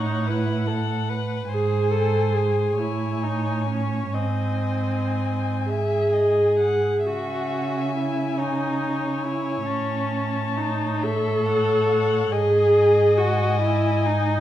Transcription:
Already playing: cello A2, viola D#4, violin C#5 F#5
0.26 viola E4, violin B4 F#5
0.68 violin A4
1.09 violin B4
1.49 cello G#2, viola G#4, violin C5 G#5
1.91 viola A4
2.34 viola G#4
2.77 cello A2, viola E4, violin C#5 G#5
3.23 viola D#4
3.68 viola C#4
4.14 cello G#2, viola C4, violin D#5 G#5
5.66 viola G#4, violin E5
6.13 violin D#5
6.59 violin F#5
7.05 cello C#3, viola F#4, violin E5 G#5
7.96 viola E4
8.38 viola D#4, violin C#5
9.23 viola E4
9.66 cello A2, viola C#4, violin A5
10.57 viola D#4
11.02 viola A4, violin C#5 E5
11.46 violin F#5
11.88 violin F#5
12.32 cello G#2, viola G#4, violin D#5 G#5
13.18 viola F#4
13.61 viola E4
14.06 viola D#4

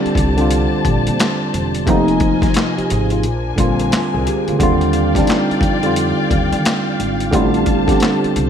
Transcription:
Already playing: tine electric piano D3 G3 C4 F4 G4, string section G4 C5 D5 A5
0.05 muted upright bass stroke, closed hi-hat
0.15 upright bass C2, kick, closed hi-hat
0.37 tine electric piano D3 G3 C4 F4, closed hi-hat
0.51 closed hi-hat
0.85 upright bass A#1, kick, closed hi-hat
1.07 upright bass A#2, closed hi-hat
1.20 snare, clap, closed hi-hat
1.54 upright bass E1, closed hi-hat
1.75 closed hi-hat
1.86 upright bass F1, tine electric piano C3 F3 A#3 D#4, string section F4 D#5 G#5, kick, closed hi-hat
2.08 closed hi-hat
2.20 kick, closed hi-hat
2.42 kick, snare, closed hi-hat
2.54 snare, clap, closed hi-hat
2.77 tine electric piano G4, muted upright bass stroke, closed hi-hat
2.90 upright bass G#1, tine electric piano G#4, closed hi-hat
3.10 tine electric piano F4, closed hi-hat
3.23 upright bass A#1, string section D4 A#4 C5 G#5, closed hi-hat
3.56 upright bass A#1, tine electric piano D3 G3 C4 F4, kick, closed hi-hat
3.79 closed hi-hat
3.92 tine electric piano F4, muted upright bass stroke, snare, clap, closed hi-hat
4.14 upright bass C2, tine electric piano G#4
4.27 tine electric piano G4, closed hi-hat
4.48 upright bass D2, tine electric piano F4, closed hi-hat
4.59 upright bass D#2, tine electric piano D3 G3 C4, string section F4 D5 F5 G5, kick, closed hi-hat
4.63 tine electric piano F4
4.81 closed hi-hat
4.93 closed hi-hat
5.15 tine electric piano G3 C4 D4, kick, snare, closed hi-hat
5.25 tine electric piano D#4, closed hi-hat
5.30 snare, clap
5.51 muted upright bass stroke, closed hi-hat
5.61 upright bass F2, kick, closed hi-hat
5.83 tine electric piano D3 G3 C4 F4, closed hi-hat
5.96 closed hi-hat
6.31 upright bass D#2, kick, closed hi-hat
6.52 upright bass D#3, closed hi-hat
6.65 snare, clap, closed hi-hat
7.00 upright bass G#1, closed hi-hat
7.20 closed hi-hat
7.31 upright bass A1, tine electric piano D3 G3 C4 F4, string section G4 C5 A5, kick, closed hi-hat
7.54 closed hi-hat
7.66 kick, closed hi-hat
7.87 tine electric piano D3 G3 B3 G4, kick, snare, closed hi-hat
7.96 tine electric piano C4
8.00 snare, clap, closed hi-hat
8.24 muted upright bass stroke, closed hi-hat
8.36 upright bass C2, closed hi-hat

